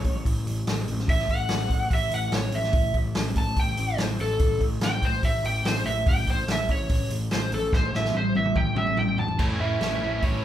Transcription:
Already playing: electric slide guitar C#5
0.04 picked electric bass A1, kick, open hi-hat
0.25 picked electric bass A1, kick, open hi-hat
0.46 picked electric bass A1, open hi-hat
0.67 picked electric bass A1, snare, open hi-hat
0.88 picked electric bass A1, open hi-hat
0.99 snare
1.08 picked electric bass A1, electric slide guitar E5, kick, open hi-hat
1.19 snare
1.28 picked electric bass A1, electric slide guitar F#5, kick, open hi-hat
1.48 picked electric bass A1, snare, open hi-hat
1.70 picked electric bass A1, kick, open hi-hat
1.90 picked electric bass A1, kick, open hi-hat
1.94 electric slide guitar E5
2.11 picked electric bass A1, electric slide guitar F#5, open hi-hat
2.32 picked electric bass A1, electric slide guitar C#5, snare, open hi-hat
2.52 picked electric bass A1, electric slide guitar E5, open hi-hat
2.63 snare
2.73 picked electric bass A1, kick, open hi-hat
2.94 picked electric bass A1, kick, open hi-hat
3.15 picked electric bass A1, snare, open hi-hat
3.35 picked electric bass A1, electric slide guitar A5, kick, open hi-hat
3.56 picked electric bass A1, electric slide guitar G5, kick, open hi-hat
3.77 picked electric bass A1, open hi-hat
3.98 picked electric bass A1, electric slide guitar C5, snare, open hi-hat
4.19 picked electric bass A1, electric slide guitar A4, open hi-hat
4.39 picked electric bass A1, kick, open hi-hat
4.60 picked electric bass A1, kick, open hi-hat
4.81 picked electric bass A1, electric slide guitar G5, snare, open hi-hat
5.02 picked electric bass A1, electric slide guitar C5, kick, open hi-hat
5.23 picked electric bass A1, electric slide guitar E5, kick, open hi-hat
5.43 picked electric bass A1, electric slide guitar G5, open hi-hat
5.64 picked electric bass A1, electric slide guitar C5, snare, open hi-hat
5.85 picked electric bass A1, electric slide guitar E5, open hi-hat
6.06 picked electric bass A1, electric slide guitar G5, kick, open hi-hat
6.27 picked electric bass A1, electric slide guitar C5, kick, open hi-hat
6.47 picked electric bass A1, snare, open hi-hat
6.51 electric slide guitar E5
6.68 picked electric bass A1, electric slide guitar C#5, kick, open hi-hat
6.89 picked electric bass A1, kick, open hi-hat
7.10 picked electric bass A1, open hi-hat
7.31 picked electric bass A1, electric slide guitar C5, snare, open hi-hat
7.51 picked electric bass A1, electric slide guitar A4, open hi-hat
7.73 picked electric bass A1, electric slide guitar C5, kick, snare
7.93 picked electric bass A1, electric slide guitar E5, snare
8.05 snare
8.14 picked electric bass A1, electric slide guitar C5, high tom
8.35 picked electric bass A1, electric slide guitar E5, high tom
8.45 mid tom
8.55 picked electric bass A1, electric slide guitar G5, kick, mid tom
8.76 picked electric bass A1, electric slide guitar E5, mid tom
8.87 mid tom
8.97 picked electric bass A1, electric slide guitar G5, mid tom
9.18 picked electric bass A1, electric slide guitar A5, floor tom
9.28 floor tom
9.39 picked electric bass A1, overdriven electric guitar A2 E3 A3 C#4 E4, kick, crash
9.60 overdriven electric guitar A2 E3 A3 C#4 E4, picked electric bass A2, electric slide guitar E5
9.81 picked electric bass A1, overdriven electric guitar A2 E3 A3 C#4 E4, snare, open hi-hat
10.01 picked electric bass A1, overdriven electric guitar A2 E3 A3 C#4 E4
10.22 picked electric bass A1, overdriven electric guitar A2 E3 A3 C#4 E4, electric slide guitar C#5, kick, open hi-hat

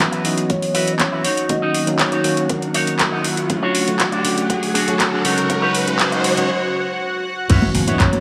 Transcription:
Already playing: tine electric piano E3 F#3 B3 C#4 F#4, analog synth pad F#4 F#5, riser
0.00 kick, clap, closed hi-hat
0.12 clean electric guitar E4 F#4 B4, closed hi-hat
0.23 tine electric piano E3 F#3 B3 C#4 F#4, soft synth lead D#5, open hi-hat
0.38 closed hi-hat
0.50 soft synth lead C#5, kick, closed hi-hat
0.62 open hi-hat
0.74 clean electric guitar E4 F#4 B4, open hi-hat
0.87 closed hi-hat
0.93 soft synth lead D#5
0.99 soft synth lead C#5, kick, clap, closed hi-hat
1.12 clean electric guitar E4 F#4 B4
1.24 clean electric guitar D#4 F#4 C#5, open hi-hat
1.37 closed hi-hat
1.49 tine electric piano D#3 F#3 A#3 C#4 F#4, soft synth lead D#5, kick, closed hi-hat
1.62 clean electric guitar D#4 F#4 D#5
1.74 open hi-hat
1.87 tine electric piano D#3 F#3 A#3 C#4 D#4, closed hi-hat
1.99 soft synth lead C#5, kick, clap, closed hi-hat
2.12 clean electric guitar D#4 F#4 C#5, closed hi-hat
2.23 tine electric piano D#3 F#3 A#3 C#4 F#4, open hi-hat
2.37 closed hi-hat
2.49 soft synth lead A#4, kick, closed hi-hat
2.62 closed hi-hat
2.74 clean electric guitar D#4 F#4 C#5, open hi-hat
2.87 closed hi-hat
2.99 kick, clap, closed hi-hat
3.12 clean electric guitar D#4 F#4 D#5
3.24 open hi-hat
3.37 muted clean electric guitar stroke, closed hi-hat
3.49 tine electric piano D3 F#3 A3 C#4 F#4, kick, closed hi-hat
3.62 clean electric guitar D4 F#4 C#5
3.75 open hi-hat
3.88 tine electric piano D3 F#3 A3 F#4 C#5, closed hi-hat
4.00 kick, clap, closed hi-hat
4.12 clean electric guitar D4 F#4 D5, closed hi-hat
4.24 tine electric piano D3 F#3 A3 C#4 F#4, open hi-hat
4.38 closed hi-hat
4.49 tine electric piano D3 F#3 A3 F#4, kick, closed hi-hat
4.63 open hi-hat
4.74 clean electric guitar D4 F#4 G#4, open hi-hat
4.88 tine electric piano D3 F#3 A3 F#4 C#5, closed hi-hat
5.00 kick, clap, closed hi-hat
5.12 clean electric guitar D4 F#4 G#4
5.24 tine electric piano C#3 F#3 G#3 C#4 F#4, clean electric guitar D#4 B4 C#5, open hi-hat
5.38 closed hi-hat
5.50 tine electric piano C#3 F#3 G#3 C#4 F#4, kick, closed hi-hat
5.62 clean electric guitar D#4 B4 C#5
5.75 open hi-hat
5.87 tine electric piano C#3 F#3 G#3 C#4 F#4, closed hi-hat
5.99 tine electric piano C#3 F#3 G#3, kick, clap, closed hi-hat
6.12 clean electric guitar D#4 B4 D#5, closed hi-hat
6.24 open hi-hat
6.37 tine electric piano C#3 F#3 G#3 C#4 F#4, closed hi-hat
7.49 slap bass F#2, tine electric piano E3 F#3 B3 C#4 F#4, clean electric guitar E4 F#4 B4 C#5, analog synth pad C#5, kick, closed hi-hat, crash, impact
7.62 high conga
7.74 slap bass F#1, open hi-hat
7.87 tine electric piano E3 F#3 B3 C#4 F#4, clean electric guitar E4 F#4 B4 C#5, closed hi-hat
7.93 soft synth lead D#5
8.00 slap bass F#2, soft synth lead C#5, kick, clap, closed hi-hat
8.13 closed hi-hat, high conga

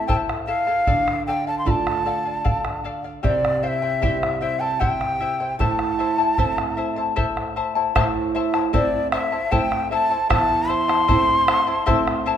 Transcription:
Already playing: nylon-string guitar A2
0.07 charango E4 A4 C5 E5 A5, quena G5, bombo low
0.29 bombo rim
0.47 charango E4 A4 E5 A5, quena F5
0.67 charango E4 A4 A5
0.87 nylon-string guitar D3, charango A4 D5 F5, bombo rim, bombo low
1.08 bombo rim
1.27 charango A4 D5 F5, quena G5
1.47 charango D5 F5, quena A5
1.59 quena C6
1.65 nylon-string guitar A3 D4 F4, charango A4 D5 F5, quena B5, bombo low
1.70 quena A5
1.87 bombo rim
2.05 charango A4 D5 F5
2.25 charango D5 F5
2.44 charango A4 D5 F5, bombo low
2.65 bombo rim
2.84 charango A4 D5 F5
3.04 charango D5 F5
3.23 nylon-string guitar C3, charango E4 G4 C5 E5 G5, quena D5, bombo rim, bombo low
3.45 bombo rim
3.63 charango E4 C5 E5 G5, quena F5
3.68 quena E5
3.82 charango E4 C5 G5
4.01 nylon-string guitar G3 C4 E4, charango E4 G4 C5 E5 G5, bombo low
4.23 bombo rim
4.41 charango E4 C5 E5 G5, quena E5
4.60 charango E4 C5 G5, quena A5
4.80 charango E4 G4 C5 E5 G5, quena G5, bombo low
5.01 bombo rim
5.20 charango E4 C5 E5 G5
5.40 charango E4 C5 G5
5.59 nylon-string guitar A2, charango E4 A4 C5 E5 A5, quena A5, bombo rim, bombo low
5.79 bombo rim
5.99 charango E4 C5 E5 A5
6.18 charango E4 C5 A5, bombo rim
6.38 nylon-string guitar A3 C4 E4, charango E4 A4 C5 E5 A5, bombo rim, bombo low
6.58 bombo rim
6.77 charango E4 C5 E5 A5
6.96 charango E4 C5 A5
7.16 charango E4 A4 C5 E5 A5, bombo low
7.37 bombo rim
7.56 charango E4 C5 E5 A5
7.75 charango E4 C5 A5
7.95 nylon-string guitar A2, charango E4 A4 C5 E5 A5, bombo rim, bombo low
8.35 charango E4 C5 E5 A5
8.54 charango E4 C5 A5, bombo rim
8.73 nylon-string guitar A3 C4 E4, charango E4 A4 C5 E5 A5, quena D5, bombo low
8.94 bombo rim
9.12 charango E4 C5 E5 A5, quena E5, bombo rim
9.32 charango E4 C5 A5
9.51 nylon-string guitar A3 C4 E4, charango E4 A4 C5 E5 A5, quena G5, bombo rim, bombo low
9.72 bombo rim
9.91 charango E4 C5 E5 A5, quena A5
10.10 charango E4 C5 A5
10.29 nylon-string guitar E2, charango E4 A4 C5 E5 A5, quena A5, bombo rim, bombo low
10.51 bombo rim
10.69 charango E4 C5 E5 A5, quena C6
10.88 charango E4 C5 A5, bombo rim
11.08 nylon-string guitar A3 C4 E4, charango E4 A4 C5 E5 A5, bombo low
11.29 bombo rim
11.47 charango E4 C5 E5 A5, bombo rim
11.67 charango E4 C5 A5
11.86 nylon-string guitar A3 C4 E4, charango E4 A4 C5 E5 A5, bombo rim, bombo low
12.07 bombo rim
12.26 charango E4 C5 E5 A5

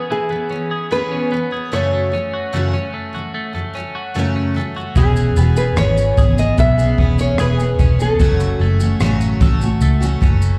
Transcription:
Already playing: steel-string acoustic guitar E3 B3, clean electric guitar B3 C#4 G#4, nylon-string guitar B4
0.10 clean electric guitar E3, nylon-string guitar G#4
0.29 steel-string acoustic guitar E3 B3, clean electric guitar B3
0.49 steel-string acoustic guitar E3 B3, clean electric guitar C#4
0.71 clean electric guitar G#4
0.91 steel-string acoustic guitar E3 B3 C#4 G#4, clean electric guitar B3, nylon-string guitar B4
1.11 clean electric guitar C#4
1.31 steel-string acoustic guitar E3 B3, clean electric guitar B3
1.51 steel-string acoustic guitar E3 B3, clean electric guitar G#4
1.72 steel-string acoustic guitar F#2 C#3 F#3 A3 C#4 F#4, clean electric guitar A3, nylon-string guitar C#5
1.93 clean electric guitar A3
2.12 steel-string acoustic guitar F#2 C#3 F#3, clean electric guitar C#4
2.33 clean electric guitar F#4
2.52 steel-string acoustic guitar F#2 C#3 F#3 A3 C#4 F#4, clean electric guitar A3
2.72 steel-string acoustic guitar F#2 C#3 F#3, clean electric guitar C#4
2.94 clean electric guitar A3
3.13 steel-string acoustic guitar F#2 C#3 F#3, clean electric guitar F#4
3.34 clean electric guitar A3
3.53 steel-string acoustic guitar F#2 C#3 F#3, clean electric guitar A3
3.73 steel-string acoustic guitar F#2 C#3 F#3, clean electric guitar C#4
3.95 clean electric guitar F#4
4.14 steel-string acoustic guitar F#2 C#3 F#3 A3 C#4 F#4, clean electric guitar A3
4.36 clean electric guitar C#4
4.54 steel-string acoustic guitar F#2 C#3 F#3, clean electric guitar A3
4.75 steel-string acoustic guitar F#2 C#3 F#3, clean electric guitar F#4
4.96 fingered electric bass E1, steel-string acoustic guitar E3 B3 C#4 G#4, clean electric guitar E3 G#4, nylon-string guitar G#4, kick, shaker
5.16 shaker
5.36 fingered electric bass E1, steel-string acoustic guitar E3 B3 C#4 G#4, clean electric guitar B3, shaker
5.45 nylon-string guitar F#4
5.56 steel-string acoustic guitar B3 C#4 G#4, nylon-string guitar B4, shaker
5.77 fingered electric bass G#1, steel-string acoustic guitar E3 B3 C#4 G#4, clean electric guitar C#4, nylon-string guitar C#5, cross-stick, shaker
5.97 shaker
6.17 fingered electric bass G#1, steel-string acoustic guitar E3 B3 C#4 G#4, clean electric guitar G#4, kick, shaker
6.37 steel-string acoustic guitar B3 C#4 G#4, nylon-string guitar D#5, shaker
6.58 fingered electric bass B1, clean electric guitar B3, nylon-string guitar E5, kick, shaker
6.77 steel-string acoustic guitar B3 C#4 G#4, shaker
6.98 fingered electric bass E1, steel-string acoustic guitar E3 B3 C#4 G#4, clean electric guitar B3, kick
7.19 clean electric guitar C#4, nylon-string guitar C#5, shaker
7.38 fingered electric bass E1, steel-string acoustic guitar E3 B3 C#4 G#4, clean electric guitar G#4, nylon-string guitar B4, cross-stick, shaker
7.58 steel-string acoustic guitar B3 C#4 G#4, shaker
7.79 fingered electric bass E1, steel-string acoustic guitar E3 B3 C#4 G#4, clean electric guitar C#4, kick, shaker
7.99 steel-string acoustic guitar B3 C#4 G#4, nylon-string guitar A4, shaker
8.19 fingered electric bass F#1, steel-string acoustic guitar F#2 C#3 F#3 A3 C#4 F#4, clean electric guitar F#3 A4, kick, shaker
8.39 cross-stick, shaker
8.60 fingered electric bass F#1, steel-string acoustic guitar F#3 A3 C#4 F#4, clean electric guitar A3
8.80 steel-string acoustic guitar F#3 A3 C#4 F#4, shaker
9.00 fingered electric bass A1, steel-string acoustic guitar F#2 C#3 F#3 A3 C#4 F#4, clean electric guitar C#4, cross-stick, shaker
9.21 shaker
9.40 fingered electric bass A1, steel-string acoustic guitar F#3 A3 C#4 F#4, clean electric guitar A4, kick, shaker
9.60 steel-string acoustic guitar F#3 A3 C#4 F#4, shaker
9.81 fingered electric bass C#2, clean electric guitar A3, shaker
10.00 steel-string acoustic guitar F#3 A3 C#4 F#4, shaker
10.21 fingered electric bass F#1, steel-string acoustic guitar F#3 A3 C#4 F#4, clean electric guitar C#4, kick, shaker
10.42 shaker

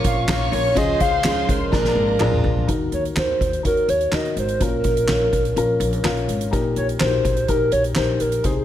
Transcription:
Already playing: steel-string acoustic guitar A#2 F3 A#3 C#4 F4, upright piano A#2 C#4 F4 G#4 A#4, violin section C#5 C#6
0.04 upright bass A#1, soft synth lead F5, kick, closed hi-hat
0.27 upright bass A#1, steel-string acoustic guitar F3 A#3 C#4 F4, upright piano C#4 F4 A#4, violin section C#5 C#6, snare, clap, closed hi-hat
0.52 upright bass A#1, steel-string acoustic guitar A#3 C#4 F4, soft synth lead C#5, open hi-hat
0.75 upright bass C#2, steel-string acoustic guitar C#3 F3 G#3 C#4 F4, upright piano C#3 C#4 F4 G#4, violin section C5 C6, soft synth lead D#5, kick, closed hi-hat
1.00 upright bass C#2, steel-string acoustic guitar G#3 C#4 F4, soft synth lead F5, kick, closed hi-hat
1.23 upright bass C#2, steel-string acoustic guitar F3 G#3 C#4, upright piano C#4 F4 G#4, snare, clap, closed hi-hat
1.27 steel-string acoustic guitar F4
1.49 upright bass C#2, soft synth lead A#4, kick, closed hi-hat
1.71 upright bass A#1, steel-string acoustic guitar A#2 F3 G#3 D4 F4, upright piano A#2 D4 G#4 A#4, violin section A#4 A#5, kick, snare
1.84 snare
1.95 upright bass G#1
2.19 upright bass A#1, steel-string acoustic guitar F3 G#3 D4, upright piano D4 G#4 A#4, clap, mid tom
2.24 steel-string acoustic guitar F4
2.32 mid tom
2.44 upright bass A#1, floor tom
2.56 floor tom
2.67 upright bass D#2, upright piano D#3 D#4 F#4 A#4, kick, closed hi-hat
2.92 upright bass D#2, soft synth lead C#5, closed hi-hat
3.05 closed hi-hat
3.15 upright bass D#2, upright piano D#4 F#4 A#4, soft synth lead C5, snare, clap
3.41 upright bass D#2, kick, closed hi-hat
3.53 closed hi-hat
3.63 upright bass D#2, upright piano D#4 F#4 C#5, soft synth lead A#4, kick, closed hi-hat
3.77 closed hi-hat
3.88 upright bass D#2, soft synth lead C#5, closed hi-hat
4.01 closed hi-hat
4.11 upright bass D#2, upright piano D#4 F#4 A#4, soft synth lead D#5, snare, clap
4.25 closed hi-hat
4.36 upright bass G#1, soft synth lead C5, closed hi-hat
4.48 closed hi-hat
4.60 upright bass A#1, upright piano A#2 C#4 F4 A#4, soft synth lead A#4, kick, closed hi-hat
4.84 upright bass A#1, kick, closed hi-hat
4.97 closed hi-hat
5.08 upright bass A#1, upright piano C#4 F4 C#5, snare, clap
5.32 upright bass A#1, kick, closed hi-hat
5.45 closed hi-hat
5.56 upright bass A#1, upright piano C#4 F4 A#4, closed hi-hat
5.80 upright bass A#1, closed hi-hat
5.93 closed hi-hat
6.03 upright bass A#1, upright piano C#4 F4 A#4, snare, clap
6.17 closed hi-hat
6.28 upright bass G#1, closed hi-hat
6.41 closed hi-hat
6.51 upright bass A#1, upright piano A#2 D#4 G4 A#4, kick, closed hi-hat
6.76 upright bass A#1, soft synth lead C#5, closed hi-hat
6.89 closed hi-hat
6.99 upright bass A#1, upright piano D#4 F#4 A#4, soft synth lead C5, snare, clap
7.06 upright piano G4
7.25 upright bass A#1, kick, closed hi-hat
7.37 closed hi-hat
7.48 upright bass A#1, upright piano D#4 G4 A#4, soft synth lead A#4, kick, closed hi-hat
7.72 upright bass A#1, soft synth lead C#5, closed hi-hat
7.84 closed hi-hat
7.95 upright bass A#1, upright piano D#4 G4 A#4, soft synth lead C5, snare, clap
8.20 upright bass A#1, soft synth lead A#4, closed hi-hat
8.32 closed hi-hat
8.43 upright bass C2, upright piano C3 D#4 G#4 C5, soft synth lead G#4, kick, closed hi-hat

